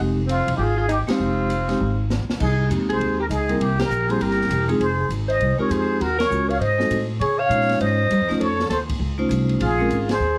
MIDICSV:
0, 0, Header, 1, 7, 480
1, 0, Start_track
1, 0, Key_signature, -4, "minor"
1, 0, Tempo, 300451
1, 1909, Time_signature, 4, 2, 24, 8
1, 16589, End_track
2, 0, Start_track
2, 0, Title_t, "Muted trumpet"
2, 0, Program_c, 0, 59
2, 484, Note_on_c, 0, 65, 86
2, 881, Note_off_c, 0, 65, 0
2, 911, Note_on_c, 0, 67, 76
2, 965, Note_on_c, 0, 68, 87
2, 989, Note_off_c, 0, 67, 0
2, 1257, Note_off_c, 0, 68, 0
2, 1274, Note_on_c, 0, 68, 92
2, 1429, Note_off_c, 0, 68, 0
2, 1461, Note_on_c, 0, 67, 84
2, 1589, Note_off_c, 0, 67, 0
2, 1755, Note_on_c, 0, 65, 84
2, 3301, Note_off_c, 0, 65, 0
2, 3860, Note_on_c, 0, 68, 84
2, 4294, Note_off_c, 0, 68, 0
2, 4660, Note_on_c, 0, 72, 77
2, 5085, Note_off_c, 0, 72, 0
2, 5131, Note_on_c, 0, 70, 78
2, 5204, Note_off_c, 0, 70, 0
2, 5303, Note_on_c, 0, 68, 82
2, 5785, Note_on_c, 0, 67, 84
2, 5809, Note_off_c, 0, 68, 0
2, 6069, Note_off_c, 0, 67, 0
2, 6077, Note_on_c, 0, 70, 91
2, 6567, Note_on_c, 0, 72, 78
2, 6591, Note_off_c, 0, 70, 0
2, 6736, Note_on_c, 0, 70, 89
2, 6760, Note_off_c, 0, 72, 0
2, 7505, Note_off_c, 0, 70, 0
2, 7685, Note_on_c, 0, 72, 97
2, 8126, Note_off_c, 0, 72, 0
2, 8468, Note_on_c, 0, 75, 97
2, 8908, Note_off_c, 0, 75, 0
2, 8958, Note_on_c, 0, 73, 85
2, 9126, Note_on_c, 0, 72, 85
2, 9150, Note_off_c, 0, 73, 0
2, 9612, Note_on_c, 0, 70, 96
2, 9636, Note_off_c, 0, 72, 0
2, 9903, Note_off_c, 0, 70, 0
2, 9915, Note_on_c, 0, 73, 102
2, 10381, Note_on_c, 0, 77, 91
2, 10405, Note_off_c, 0, 73, 0
2, 10532, Note_off_c, 0, 77, 0
2, 10542, Note_on_c, 0, 75, 92
2, 11272, Note_off_c, 0, 75, 0
2, 11517, Note_on_c, 0, 73, 100
2, 11801, Note_on_c, 0, 77, 109
2, 11825, Note_off_c, 0, 73, 0
2, 12465, Note_off_c, 0, 77, 0
2, 12478, Note_on_c, 0, 75, 94
2, 13443, Note_on_c, 0, 73, 104
2, 13467, Note_off_c, 0, 75, 0
2, 13915, Note_off_c, 0, 73, 0
2, 13928, Note_on_c, 0, 72, 87
2, 14058, Note_off_c, 0, 72, 0
2, 15351, Note_on_c, 0, 68, 107
2, 16072, Note_off_c, 0, 68, 0
2, 16139, Note_on_c, 0, 72, 96
2, 16577, Note_off_c, 0, 72, 0
2, 16589, End_track
3, 0, Start_track
3, 0, Title_t, "Alto saxophone"
3, 0, Program_c, 1, 65
3, 433, Note_on_c, 1, 60, 72
3, 854, Note_off_c, 1, 60, 0
3, 879, Note_on_c, 1, 63, 55
3, 934, Note_on_c, 1, 65, 87
3, 958, Note_off_c, 1, 63, 0
3, 1224, Note_off_c, 1, 65, 0
3, 1234, Note_on_c, 1, 65, 72
3, 1408, Note_off_c, 1, 65, 0
3, 1416, Note_on_c, 1, 63, 74
3, 1554, Note_off_c, 1, 63, 0
3, 1733, Note_on_c, 1, 60, 73
3, 3289, Note_off_c, 1, 60, 0
3, 3830, Note_on_c, 1, 63, 61
3, 4278, Note_off_c, 1, 63, 0
3, 4618, Note_on_c, 1, 68, 69
3, 5062, Note_off_c, 1, 68, 0
3, 5110, Note_on_c, 1, 67, 63
3, 5187, Note_off_c, 1, 67, 0
3, 5273, Note_on_c, 1, 63, 60
3, 5768, Note_on_c, 1, 64, 67
3, 5792, Note_off_c, 1, 63, 0
3, 6043, Note_off_c, 1, 64, 0
3, 6052, Note_on_c, 1, 67, 80
3, 6548, Note_on_c, 1, 68, 77
3, 6572, Note_off_c, 1, 67, 0
3, 6741, Note_on_c, 1, 67, 80
3, 6765, Note_off_c, 1, 68, 0
3, 7507, Note_off_c, 1, 67, 0
3, 7677, Note_on_c, 1, 68, 76
3, 8122, Note_off_c, 1, 68, 0
3, 8440, Note_on_c, 1, 72, 84
3, 8893, Note_off_c, 1, 72, 0
3, 8937, Note_on_c, 1, 70, 71
3, 9116, Note_on_c, 1, 68, 78
3, 9140, Note_off_c, 1, 70, 0
3, 9608, Note_on_c, 1, 66, 79
3, 9632, Note_off_c, 1, 68, 0
3, 9869, Note_off_c, 1, 66, 0
3, 9878, Note_on_c, 1, 70, 89
3, 10375, Note_on_c, 1, 73, 73
3, 10399, Note_off_c, 1, 70, 0
3, 10549, Note_off_c, 1, 73, 0
3, 10559, Note_on_c, 1, 72, 81
3, 11280, Note_off_c, 1, 72, 0
3, 11528, Note_on_c, 1, 68, 78
3, 11820, Note_on_c, 1, 73, 89
3, 11844, Note_off_c, 1, 68, 0
3, 12466, Note_off_c, 1, 73, 0
3, 12475, Note_on_c, 1, 72, 80
3, 13422, Note_on_c, 1, 69, 77
3, 13446, Note_off_c, 1, 72, 0
3, 13891, Note_off_c, 1, 69, 0
3, 13901, Note_on_c, 1, 69, 66
3, 14037, Note_off_c, 1, 69, 0
3, 15369, Note_on_c, 1, 65, 82
3, 16082, Note_off_c, 1, 65, 0
3, 16148, Note_on_c, 1, 68, 85
3, 16582, Note_off_c, 1, 68, 0
3, 16589, End_track
4, 0, Start_track
4, 0, Title_t, "Vibraphone"
4, 0, Program_c, 2, 11
4, 0, Note_on_c, 2, 56, 58
4, 0, Note_on_c, 2, 60, 52
4, 0, Note_on_c, 2, 63, 56
4, 0, Note_on_c, 2, 67, 67
4, 252, Note_off_c, 2, 60, 0
4, 254, Note_off_c, 2, 56, 0
4, 256, Note_off_c, 2, 63, 0
4, 261, Note_off_c, 2, 67, 0
4, 1715, Note_on_c, 2, 56, 74
4, 1718, Note_on_c, 2, 60, 73
4, 1726, Note_on_c, 2, 63, 64
4, 1727, Note_on_c, 2, 67, 78
4, 2347, Note_off_c, 2, 56, 0
4, 2349, Note_off_c, 2, 60, 0
4, 2352, Note_off_c, 2, 63, 0
4, 2353, Note_off_c, 2, 67, 0
4, 2683, Note_on_c, 2, 56, 67
4, 2687, Note_on_c, 2, 60, 59
4, 2695, Note_on_c, 2, 63, 63
4, 2700, Note_on_c, 2, 67, 75
4, 2849, Note_off_c, 2, 56, 0
4, 2851, Note_off_c, 2, 60, 0
4, 2855, Note_off_c, 2, 63, 0
4, 2857, Note_off_c, 2, 67, 0
4, 4306, Note_on_c, 2, 58, 55
4, 4307, Note_on_c, 2, 56, 57
4, 4314, Note_on_c, 2, 60, 53
4, 4319, Note_on_c, 2, 63, 53
4, 4322, Note_on_c, 2, 67, 65
4, 5030, Note_off_c, 2, 58, 0
4, 5031, Note_off_c, 2, 56, 0
4, 5034, Note_off_c, 2, 60, 0
4, 5037, Note_off_c, 2, 63, 0
4, 5038, Note_off_c, 2, 67, 0
4, 5570, Note_on_c, 2, 55, 72
4, 5578, Note_on_c, 2, 58, 64
4, 5582, Note_on_c, 2, 60, 60
4, 5586, Note_on_c, 2, 64, 66
4, 5590, Note_on_c, 2, 70, 83
4, 5734, Note_off_c, 2, 55, 0
4, 5738, Note_off_c, 2, 58, 0
4, 5740, Note_off_c, 2, 60, 0
4, 5742, Note_off_c, 2, 64, 0
4, 5744, Note_off_c, 2, 70, 0
4, 6520, Note_on_c, 2, 55, 64
4, 6530, Note_on_c, 2, 58, 58
4, 6534, Note_on_c, 2, 60, 57
4, 6535, Note_on_c, 2, 64, 58
4, 6540, Note_on_c, 2, 67, 71
4, 7151, Note_off_c, 2, 55, 0
4, 7156, Note_off_c, 2, 58, 0
4, 7158, Note_off_c, 2, 60, 0
4, 7159, Note_off_c, 2, 64, 0
4, 7161, Note_off_c, 2, 67, 0
4, 7480, Note_on_c, 2, 56, 85
4, 7487, Note_on_c, 2, 60, 80
4, 7489, Note_on_c, 2, 63, 80
4, 7493, Note_on_c, 2, 68, 87
4, 7497, Note_on_c, 2, 65, 76
4, 7649, Note_off_c, 2, 56, 0
4, 7652, Note_off_c, 2, 60, 0
4, 7654, Note_off_c, 2, 63, 0
4, 7656, Note_off_c, 2, 68, 0
4, 7657, Note_off_c, 2, 65, 0
4, 8911, Note_on_c, 2, 56, 74
4, 8923, Note_on_c, 2, 60, 71
4, 8923, Note_on_c, 2, 63, 62
4, 8926, Note_on_c, 2, 65, 64
4, 8935, Note_on_c, 2, 67, 78
4, 9546, Note_off_c, 2, 56, 0
4, 9552, Note_off_c, 2, 60, 0
4, 9552, Note_off_c, 2, 63, 0
4, 9554, Note_off_c, 2, 65, 0
4, 9558, Note_off_c, 2, 67, 0
4, 10062, Note_on_c, 2, 56, 64
4, 10063, Note_on_c, 2, 61, 57
4, 10068, Note_on_c, 2, 66, 63
4, 10069, Note_on_c, 2, 65, 57
4, 10077, Note_on_c, 2, 70, 72
4, 10337, Note_off_c, 2, 56, 0
4, 10338, Note_off_c, 2, 61, 0
4, 10340, Note_off_c, 2, 66, 0
4, 10341, Note_off_c, 2, 65, 0
4, 10345, Note_off_c, 2, 70, 0
4, 10831, Note_on_c, 2, 60, 56
4, 10832, Note_on_c, 2, 56, 57
4, 10835, Note_on_c, 2, 63, 52
4, 10844, Note_on_c, 2, 66, 57
4, 10845, Note_on_c, 2, 69, 63
4, 11004, Note_off_c, 2, 56, 0
4, 11004, Note_off_c, 2, 60, 0
4, 11006, Note_off_c, 2, 63, 0
4, 11010, Note_off_c, 2, 66, 0
4, 11011, Note_off_c, 2, 69, 0
4, 11975, Note_on_c, 2, 56, 58
4, 11975, Note_on_c, 2, 61, 49
4, 11980, Note_on_c, 2, 63, 51
4, 11985, Note_on_c, 2, 65, 50
4, 11996, Note_on_c, 2, 73, 57
4, 12702, Note_off_c, 2, 56, 0
4, 12702, Note_off_c, 2, 61, 0
4, 12705, Note_off_c, 2, 63, 0
4, 12707, Note_off_c, 2, 65, 0
4, 12712, Note_off_c, 2, 73, 0
4, 13240, Note_on_c, 2, 57, 83
4, 13241, Note_on_c, 2, 61, 75
4, 13243, Note_on_c, 2, 63, 73
4, 13249, Note_on_c, 2, 72, 89
4, 13250, Note_on_c, 2, 65, 75
4, 13406, Note_off_c, 2, 57, 0
4, 13407, Note_off_c, 2, 61, 0
4, 13408, Note_off_c, 2, 63, 0
4, 13411, Note_off_c, 2, 72, 0
4, 13412, Note_off_c, 2, 65, 0
4, 14667, Note_on_c, 2, 57, 76
4, 14672, Note_on_c, 2, 63, 63
4, 14676, Note_on_c, 2, 61, 66
4, 14677, Note_on_c, 2, 65, 67
4, 14684, Note_on_c, 2, 72, 78
4, 15299, Note_off_c, 2, 57, 0
4, 15302, Note_off_c, 2, 63, 0
4, 15304, Note_off_c, 2, 61, 0
4, 15305, Note_off_c, 2, 65, 0
4, 15308, Note_off_c, 2, 72, 0
4, 15641, Note_on_c, 2, 56, 83
4, 15651, Note_on_c, 2, 60, 74
4, 15651, Note_on_c, 2, 61, 71
4, 15656, Note_on_c, 2, 65, 79
4, 15662, Note_on_c, 2, 70, 90
4, 15804, Note_off_c, 2, 56, 0
4, 15809, Note_off_c, 2, 60, 0
4, 15809, Note_off_c, 2, 61, 0
4, 15812, Note_off_c, 2, 65, 0
4, 15815, Note_off_c, 2, 70, 0
4, 16589, End_track
5, 0, Start_track
5, 0, Title_t, "Upright bass"
5, 0, Program_c, 3, 32
5, 0, Note_on_c, 3, 29, 78
5, 704, Note_off_c, 3, 29, 0
5, 747, Note_on_c, 3, 28, 69
5, 914, Note_off_c, 3, 28, 0
5, 923, Note_on_c, 3, 32, 73
5, 1661, Note_off_c, 3, 32, 0
5, 1905, Note_on_c, 3, 29, 83
5, 2821, Note_off_c, 3, 29, 0
5, 2877, Note_on_c, 3, 32, 82
5, 3470, Note_off_c, 3, 32, 0
5, 3512, Note_on_c, 3, 36, 46
5, 3646, Note_off_c, 3, 36, 0
5, 3656, Note_on_c, 3, 33, 57
5, 3812, Note_off_c, 3, 33, 0
5, 3835, Note_on_c, 3, 36, 83
5, 4292, Note_off_c, 3, 36, 0
5, 4301, Note_on_c, 3, 41, 73
5, 4463, Note_off_c, 3, 41, 0
5, 4463, Note_on_c, 3, 39, 57
5, 4611, Note_off_c, 3, 39, 0
5, 4621, Note_on_c, 3, 36, 61
5, 4763, Note_off_c, 3, 36, 0
5, 4773, Note_on_c, 3, 39, 76
5, 5248, Note_off_c, 3, 39, 0
5, 5260, Note_on_c, 3, 37, 82
5, 5722, Note_off_c, 3, 37, 0
5, 5731, Note_on_c, 3, 36, 78
5, 6195, Note_off_c, 3, 36, 0
5, 6204, Note_on_c, 3, 34, 77
5, 6685, Note_off_c, 3, 34, 0
5, 6700, Note_on_c, 3, 31, 80
5, 7164, Note_off_c, 3, 31, 0
5, 7174, Note_on_c, 3, 28, 87
5, 7635, Note_off_c, 3, 28, 0
5, 7644, Note_on_c, 3, 29, 82
5, 8117, Note_off_c, 3, 29, 0
5, 8127, Note_on_c, 3, 32, 78
5, 8606, Note_off_c, 3, 32, 0
5, 8620, Note_on_c, 3, 36, 78
5, 8905, Note_off_c, 3, 36, 0
5, 9095, Note_on_c, 3, 41, 84
5, 9569, Note_off_c, 3, 41, 0
5, 9585, Note_on_c, 3, 39, 74
5, 10054, Note_off_c, 3, 39, 0
5, 10068, Note_on_c, 3, 37, 79
5, 10532, Note_off_c, 3, 37, 0
5, 10542, Note_on_c, 3, 44, 81
5, 11012, Note_off_c, 3, 44, 0
5, 11020, Note_on_c, 3, 45, 81
5, 11487, Note_off_c, 3, 45, 0
5, 11496, Note_on_c, 3, 49, 80
5, 11956, Note_off_c, 3, 49, 0
5, 11965, Note_on_c, 3, 46, 81
5, 12443, Note_off_c, 3, 46, 0
5, 12460, Note_on_c, 3, 44, 81
5, 12930, Note_off_c, 3, 44, 0
5, 12937, Note_on_c, 3, 43, 86
5, 13104, Note_off_c, 3, 43, 0
5, 13104, Note_on_c, 3, 41, 50
5, 13242, Note_off_c, 3, 41, 0
5, 13252, Note_on_c, 3, 37, 59
5, 13402, Note_off_c, 3, 37, 0
5, 13412, Note_on_c, 3, 41, 74
5, 13875, Note_off_c, 3, 41, 0
5, 13884, Note_on_c, 3, 39, 83
5, 14357, Note_off_c, 3, 39, 0
5, 14367, Note_on_c, 3, 37, 80
5, 14836, Note_off_c, 3, 37, 0
5, 14845, Note_on_c, 3, 36, 93
5, 15320, Note_off_c, 3, 36, 0
5, 15340, Note_on_c, 3, 34, 89
5, 15807, Note_off_c, 3, 34, 0
5, 15818, Note_on_c, 3, 32, 86
5, 16275, Note_off_c, 3, 32, 0
5, 16285, Note_on_c, 3, 39, 79
5, 16589, Note_off_c, 3, 39, 0
5, 16589, End_track
6, 0, Start_track
6, 0, Title_t, "Muted upright bass strokes"
6, 1714, Note_on_c, 9, 29, 37
6, 1874, Note_off_c, 9, 29, 0
6, 8924, Note_on_c, 9, 29, 39
6, 9084, Note_off_c, 9, 29, 0
6, 16589, End_track
7, 0, Start_track
7, 0, Title_t, "Drums"
7, 467, Note_on_c, 9, 44, 53
7, 467, Note_on_c, 9, 51, 61
7, 627, Note_off_c, 9, 44, 0
7, 627, Note_off_c, 9, 51, 0
7, 767, Note_on_c, 9, 51, 64
7, 926, Note_off_c, 9, 51, 0
7, 1423, Note_on_c, 9, 37, 57
7, 1423, Note_on_c, 9, 44, 53
7, 1423, Note_on_c, 9, 51, 65
7, 1582, Note_off_c, 9, 37, 0
7, 1582, Note_off_c, 9, 44, 0
7, 1582, Note_off_c, 9, 51, 0
7, 1732, Note_on_c, 9, 38, 71
7, 1732, Note_on_c, 9, 51, 64
7, 1892, Note_off_c, 9, 38, 0
7, 1892, Note_off_c, 9, 51, 0
7, 2395, Note_on_c, 9, 44, 43
7, 2395, Note_on_c, 9, 51, 59
7, 2555, Note_off_c, 9, 44, 0
7, 2555, Note_off_c, 9, 51, 0
7, 2697, Note_on_c, 9, 38, 34
7, 2697, Note_on_c, 9, 51, 43
7, 2857, Note_off_c, 9, 38, 0
7, 2857, Note_off_c, 9, 51, 0
7, 2880, Note_on_c, 9, 48, 39
7, 3039, Note_off_c, 9, 48, 0
7, 3360, Note_on_c, 9, 38, 68
7, 3360, Note_on_c, 9, 44, 48
7, 3520, Note_off_c, 9, 38, 0
7, 3520, Note_off_c, 9, 44, 0
7, 3666, Note_on_c, 9, 38, 66
7, 3826, Note_off_c, 9, 38, 0
7, 3837, Note_on_c, 9, 49, 72
7, 3840, Note_on_c, 9, 36, 68
7, 3997, Note_off_c, 9, 49, 0
7, 4000, Note_off_c, 9, 36, 0
7, 4325, Note_on_c, 9, 44, 47
7, 4325, Note_on_c, 9, 51, 55
7, 4485, Note_off_c, 9, 44, 0
7, 4485, Note_off_c, 9, 51, 0
7, 4630, Note_on_c, 9, 51, 46
7, 4789, Note_off_c, 9, 51, 0
7, 4808, Note_on_c, 9, 51, 51
7, 4968, Note_off_c, 9, 51, 0
7, 5283, Note_on_c, 9, 44, 58
7, 5283, Note_on_c, 9, 51, 67
7, 5443, Note_off_c, 9, 44, 0
7, 5443, Note_off_c, 9, 51, 0
7, 5578, Note_on_c, 9, 51, 44
7, 5738, Note_off_c, 9, 51, 0
7, 5767, Note_on_c, 9, 51, 68
7, 5926, Note_off_c, 9, 51, 0
7, 6063, Note_on_c, 9, 38, 80
7, 6063, Note_on_c, 9, 51, 60
7, 6223, Note_off_c, 9, 38, 0
7, 6223, Note_off_c, 9, 51, 0
7, 6244, Note_on_c, 9, 44, 51
7, 6404, Note_off_c, 9, 44, 0
7, 6549, Note_on_c, 9, 51, 46
7, 6708, Note_off_c, 9, 51, 0
7, 6724, Note_on_c, 9, 51, 61
7, 6883, Note_on_c, 9, 38, 27
7, 6884, Note_off_c, 9, 51, 0
7, 7043, Note_off_c, 9, 38, 0
7, 7045, Note_on_c, 9, 38, 38
7, 7198, Note_on_c, 9, 44, 55
7, 7198, Note_on_c, 9, 51, 67
7, 7205, Note_off_c, 9, 38, 0
7, 7358, Note_off_c, 9, 44, 0
7, 7358, Note_off_c, 9, 51, 0
7, 7494, Note_on_c, 9, 51, 45
7, 7654, Note_off_c, 9, 51, 0
7, 7679, Note_on_c, 9, 51, 57
7, 7838, Note_off_c, 9, 51, 0
7, 8154, Note_on_c, 9, 44, 48
7, 8154, Note_on_c, 9, 51, 66
7, 8314, Note_off_c, 9, 44, 0
7, 8314, Note_off_c, 9, 51, 0
7, 8462, Note_on_c, 9, 51, 44
7, 8622, Note_off_c, 9, 51, 0
7, 8636, Note_on_c, 9, 51, 55
7, 8796, Note_off_c, 9, 51, 0
7, 9121, Note_on_c, 9, 44, 61
7, 9121, Note_on_c, 9, 51, 64
7, 9281, Note_off_c, 9, 44, 0
7, 9281, Note_off_c, 9, 51, 0
7, 9602, Note_on_c, 9, 51, 59
7, 9761, Note_off_c, 9, 51, 0
7, 9903, Note_on_c, 9, 38, 73
7, 9903, Note_on_c, 9, 51, 64
7, 10062, Note_off_c, 9, 38, 0
7, 10062, Note_off_c, 9, 51, 0
7, 10087, Note_on_c, 9, 44, 47
7, 10246, Note_off_c, 9, 44, 0
7, 10391, Note_on_c, 9, 51, 48
7, 10551, Note_off_c, 9, 51, 0
7, 10568, Note_on_c, 9, 51, 57
7, 10728, Note_off_c, 9, 51, 0
7, 10861, Note_on_c, 9, 38, 51
7, 11021, Note_off_c, 9, 38, 0
7, 11035, Note_on_c, 9, 44, 55
7, 11035, Note_on_c, 9, 51, 68
7, 11195, Note_off_c, 9, 44, 0
7, 11195, Note_off_c, 9, 51, 0
7, 11522, Note_on_c, 9, 51, 61
7, 11682, Note_off_c, 9, 51, 0
7, 11993, Note_on_c, 9, 44, 56
7, 11993, Note_on_c, 9, 51, 59
7, 12152, Note_off_c, 9, 44, 0
7, 12152, Note_off_c, 9, 51, 0
7, 12156, Note_on_c, 9, 38, 30
7, 12291, Note_on_c, 9, 51, 50
7, 12311, Note_off_c, 9, 38, 0
7, 12311, Note_on_c, 9, 38, 45
7, 12450, Note_off_c, 9, 51, 0
7, 12470, Note_on_c, 9, 51, 60
7, 12471, Note_off_c, 9, 38, 0
7, 12630, Note_off_c, 9, 51, 0
7, 12950, Note_on_c, 9, 44, 56
7, 12950, Note_on_c, 9, 51, 64
7, 13110, Note_off_c, 9, 44, 0
7, 13110, Note_off_c, 9, 51, 0
7, 13250, Note_on_c, 9, 38, 35
7, 13410, Note_off_c, 9, 38, 0
7, 13435, Note_on_c, 9, 51, 60
7, 13594, Note_off_c, 9, 51, 0
7, 13730, Note_on_c, 9, 38, 57
7, 13890, Note_off_c, 9, 38, 0
7, 13906, Note_on_c, 9, 38, 36
7, 13906, Note_on_c, 9, 44, 49
7, 13906, Note_on_c, 9, 51, 65
7, 14066, Note_off_c, 9, 38, 0
7, 14066, Note_off_c, 9, 44, 0
7, 14066, Note_off_c, 9, 51, 0
7, 14207, Note_on_c, 9, 36, 58
7, 14210, Note_on_c, 9, 51, 74
7, 14367, Note_off_c, 9, 36, 0
7, 14370, Note_off_c, 9, 51, 0
7, 14869, Note_on_c, 9, 44, 51
7, 14869, Note_on_c, 9, 51, 69
7, 15029, Note_off_c, 9, 44, 0
7, 15029, Note_off_c, 9, 51, 0
7, 15166, Note_on_c, 9, 51, 48
7, 15326, Note_off_c, 9, 51, 0
7, 15345, Note_on_c, 9, 51, 73
7, 15505, Note_off_c, 9, 51, 0
7, 15825, Note_on_c, 9, 44, 55
7, 15825, Note_on_c, 9, 51, 59
7, 15984, Note_off_c, 9, 44, 0
7, 15984, Note_off_c, 9, 51, 0
7, 16122, Note_on_c, 9, 38, 82
7, 16122, Note_on_c, 9, 51, 64
7, 16281, Note_off_c, 9, 38, 0
7, 16281, Note_off_c, 9, 51, 0
7, 16589, End_track
0, 0, End_of_file